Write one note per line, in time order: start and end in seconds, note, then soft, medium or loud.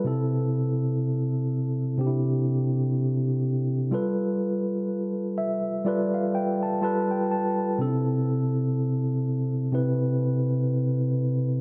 0.04 1.73 C3 medium
0.04 1.74 C4 medium
0.04 1.74 E4 medium
0.04 1.75 A4 medium
1.98 3.67 C3 medium
1.98 3.67 C4 medium
1.98 2.07 D4 medium
1.98 3.68 G4 medium
2.06 3.71 E4 medium
3.91 5.60 G3 medium
3.91 5.61 F4 medium
3.91 5.61 A4 medium
3.91 5.62 B4 medium
5.38 5.83 E5 medium
5.85 6.80 G3 medium
5.85 6.81 F4 medium
5.85 6.82 A4 medium
5.85 6.83 B4 medium
5.85 6.12 D5 medium
6.14 6.33 F5 medium
6.35 6.61 G5 medium
6.63 6.81 A5 medium
6.82 7.67 G3 medium
6.82 7.67 F4 medium
6.82 7.68 A4 medium
6.82 7.68 B4 loud
6.82 7.09 A5 medium
7.11 7.30 G5 medium
7.31 7.76 A5 medium
7.78 9.47 C3 medium
7.78 9.48 C4 medium
7.78 7.87 D4 medium
7.78 9.49 A4 medium
7.87 9.51 E4 medium
9.72 11.41 C3 medium
9.72 11.41 C4 medium
9.72 11.42 E4 medium
9.72 11.42 B4 medium